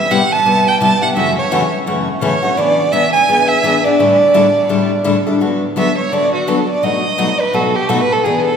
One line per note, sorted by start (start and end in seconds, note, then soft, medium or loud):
0.00 0.12 E5 medium
0.11 0.21 C3 medium
0.11 0.21 G3 medium
0.11 0.21 B3 medium
0.11 0.21 E4 medium
0.11 0.21 G4 medium
0.11 0.34 F#5 medium
0.32 0.69 A5 medium
0.45 0.66 C3 medium
0.45 0.66 G3 medium
0.45 0.66 B3 medium
0.45 0.66 E4 medium
0.45 0.66 G4 medium
0.68 0.80 G5 medium
0.81 0.91 C3 medium
0.81 0.91 G3 medium
0.81 0.92 B3 medium
0.81 0.92 E4 medium
0.81 0.92 G4 medium
0.81 1.00 A5 medium
1.02 1.16 B3 soft
1.02 1.15 E4 soft
1.02 1.15 G4 soft
1.02 1.09 F#5 medium
1.16 1.36 F#2 medium
1.16 1.36 C#3 medium
1.16 1.37 E3 medium
1.16 1.37 A3 medium
1.16 1.37 C#4 medium
1.16 1.37 F#4 medium
1.16 1.35 E5 medium
1.38 1.70 C#5 medium
1.51 1.62 F#2 medium
1.51 1.62 C#3 medium
1.51 1.62 E3 medium
1.51 1.62 A3 medium
1.51 1.62 C#4 medium
1.51 1.63 F#4 medium
1.87 2.07 F#2 medium
1.87 2.07 C#3 medium
1.87 2.07 E3 medium
1.87 2.07 A3 medium
1.87 2.08 C#4 medium
1.87 2.08 F#4 medium
2.21 2.32 F#2 medium
2.21 2.33 C#3 medium
2.21 2.33 E3 medium
2.21 2.33 A3 medium
2.21 2.33 C#4 medium
2.21 2.33 F#4 medium
2.21 2.59 C#5 medium
2.42 2.56 E3 soft
2.42 2.57 A3 soft
2.42 2.57 C#4 medium
2.42 2.56 F#4 medium
2.57 2.78 E3 medium
2.57 2.78 B3 medium
2.57 2.78 D4 medium
2.57 2.78 G#4 medium
2.57 2.94 D5 medium
2.92 3.03 E3 medium
2.92 3.04 B3 medium
2.92 3.04 D4 medium
2.92 3.04 G#4 medium
2.92 3.12 E5 medium
3.12 3.49 G#5 medium
3.28 3.49 E3 medium
3.28 3.49 B3 medium
3.28 3.49 D4 medium
3.28 3.50 G#4 medium
3.48 3.86 E5 medium
3.63 3.74 E3 medium
3.63 3.75 B3 medium
3.63 3.75 D4 medium
3.63 3.75 G#4 medium
3.84 3.99 B3 soft
3.84 3.99 D4 medium
3.84 3.99 G#4 soft
3.84 5.05 D5 medium
3.99 4.20 A2 medium
3.99 4.20 D3 medium
3.99 4.20 G3 medium
3.99 4.20 D4 medium
3.99 4.20 E4 medium
3.99 4.20 A4 medium
4.34 4.45 A2 medium
4.34 4.45 D3 medium
4.34 4.45 G3 medium
4.34 4.45 D4 medium
4.34 4.45 E4 medium
4.34 4.46 A4 medium
4.69 4.90 A2 medium
4.69 4.90 D3 medium
4.69 4.90 G3 medium
4.69 4.90 D4 medium
4.69 4.90 E4 medium
4.69 4.91 A4 medium
5.04 5.16 A2 medium
5.04 5.16 D3 medium
5.04 5.16 G3 medium
5.04 5.16 D4 medium
5.04 5.16 E4 medium
5.04 5.16 A4 medium
5.27 5.41 G3 soft
5.27 5.41 D4 soft
5.27 5.40 E4 soft
5.27 5.40 A4 medium
5.41 5.61 D3 medium
5.41 5.61 F#3 medium
5.41 5.62 B3 medium
5.41 5.61 F#4 medium
5.41 5.62 A4 medium
5.76 5.87 D3 medium
5.76 5.87 F#3 medium
5.76 5.88 B3 medium
5.76 5.87 F#4 medium
5.76 5.88 A4 medium
5.76 5.97 E5 medium
5.98 6.14 C#5 medium
6.12 6.32 D3 medium
6.12 6.33 F#3 medium
6.12 6.33 B3 medium
6.12 6.33 F#4 medium
6.12 6.33 A4 medium
6.12 6.33 D5 medium
6.34 6.50 F#4 medium
6.47 6.58 D3 medium
6.47 6.58 F#3 medium
6.47 6.58 B3 medium
6.47 6.58 F#4 medium
6.47 6.69 A4 medium
6.47 6.58 A4 medium
6.70 6.85 D5 medium
6.83 7.03 B2 medium
6.83 7.03 F#3 medium
6.83 7.04 A3 medium
6.83 7.04 D#4 medium
6.83 7.04 F#4 medium
6.83 7.42 D#5 medium
7.18 7.29 B2 medium
7.18 7.29 F#3 medium
7.18 7.29 A3 medium
7.18 7.29 D#4 medium
7.18 7.29 F#4 medium
7.40 7.56 B4 medium
7.54 7.74 B2 medium
7.54 7.74 F#3 medium
7.54 7.74 A3 medium
7.54 7.74 D#4 medium
7.54 7.74 F#4 medium
7.54 7.77 A4 medium
7.75 7.90 G4 medium
7.89 8.00 B2 medium
7.89 8.00 F#3 medium
7.89 8.00 A3 medium
7.89 8.00 D#4 medium
7.89 8.00 F#4 loud
7.89 8.02 A4 medium
8.00 8.13 B4 loud
8.12 8.25 A4 medium
8.24 8.45 B2 medium
8.24 8.45 E3 medium
8.24 8.45 B3 medium
8.24 8.45 D4 medium
8.24 8.44 G#4 medium
8.24 8.45 G#4 medium
8.45 8.57 A4 medium